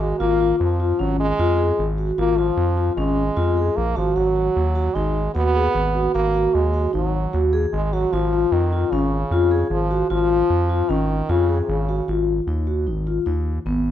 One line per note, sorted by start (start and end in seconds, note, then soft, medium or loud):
0.00 0.13 G#1 medium
0.00 0.18 G#3 medium
0.00 0.11 F#4 medium
0.19 0.53 G#1 medium
0.19 0.56 A#3 medium
0.19 0.31 F4 medium
0.40 0.62 F4 medium
0.59 0.93 F2 medium
0.59 1.01 F3 medium
0.80 0.91 F4 medium
0.99 1.33 G#1 medium
0.99 1.19 F#3 medium
0.99 1.22 C#4 medium
1.20 1.88 G#3 medium
1.39 1.72 F2 medium
1.39 1.51 F4 medium
1.59 1.81 G#4 medium
1.79 2.12 G#1 medium
1.98 2.10 F#4 medium
2.18 2.51 G#1 medium
2.18 2.39 A#3 medium
2.18 2.30 F4 medium
2.38 2.96 F3 medium
2.38 2.61 F4 medium
2.57 2.90 F2 medium
2.77 2.89 F4 medium
2.97 3.30 G#1 medium
2.97 3.78 G#3 medium
2.97 3.20 C#4 medium
3.37 3.70 F2 medium
3.37 3.48 F4 medium
3.57 3.80 G#4 medium
3.76 3.95 A#1 medium
3.76 3.98 A#3 medium
3.96 4.15 G#1 medium
3.96 4.17 F3 medium
3.96 4.08 F#4 medium
4.15 4.50 G#1 medium
4.15 4.96 F#3 medium
4.15 4.27 F#4 medium
4.36 4.59 F#4 medium
4.56 4.89 D#2 loud
4.75 4.87 F#4 medium
4.94 5.29 G#1 medium
4.94 5.34 G#3 medium
4.94 5.18 D#4 medium
5.34 5.68 D#2 medium
5.34 6.10 B3 loud
5.34 5.46 F#4 medium
5.55 5.78 G#4 medium
5.75 6.08 G#1 medium
5.95 6.06 F#4 medium
6.15 6.48 G#1 medium
6.15 6.56 A#3 medium
6.15 6.26 F#4 medium
6.34 6.57 F#4 medium
6.54 6.87 D#2 medium
6.54 6.93 G#3 medium
6.74 6.85 F#4 medium
6.93 7.27 G#1 medium
6.93 7.43 F#3 medium
6.93 7.16 D#4 medium
7.33 7.67 D#2 medium
7.33 7.45 F#4 medium
7.53 7.75 G#4 medium
7.73 8.06 G#1 medium
7.73 7.95 G#3 medium
7.93 8.14 F#3 medium
7.93 8.04 F#4 medium
8.12 8.45 G#1 medium
8.12 8.54 F3 medium
8.12 8.24 F4 medium
8.33 8.55 F4 medium
8.52 8.85 F2 medium
8.52 8.92 D#3 medium
8.73 8.84 F4 medium
8.91 9.25 G#1 medium
8.91 9.70 C#3 medium
8.91 9.15 C#4 medium
9.31 9.64 F2 medium
9.31 9.43 F4 medium
9.51 9.74 G#4 medium
9.70 10.03 G#1 medium
9.70 10.07 F3 medium
9.91 10.02 F#4 medium
10.10 10.43 G#1 medium
10.10 10.92 F3 medium
10.10 10.21 F4 medium
10.30 10.52 F4 medium
10.50 10.83 F2 medium
10.69 10.81 F4 medium
10.89 11.22 G#1 medium
10.89 11.32 D#3 medium
10.89 11.11 C#4 medium
11.29 11.62 F2 medium
11.29 11.61 C#3 medium
11.29 11.40 F4 medium
11.49 11.71 G#4 medium
11.62 11.71 C3 soft
11.69 12.01 G#1 medium
11.69 12.08 C#3 medium
11.89 12.00 F#4 medium
12.08 12.41 G#1 medium
12.08 12.31 F4 medium
12.47 12.88 D#2 medium
12.47 12.59 D#4 medium
12.67 12.78 F#4 medium
12.87 13.19 G#1 medium
12.87 12.98 D#4 medium
13.07 13.18 F4 medium
13.26 13.59 D#2 medium
13.26 13.49 D#4 medium
13.66 13.91 G#1 medium
13.66 13.88 B3 medium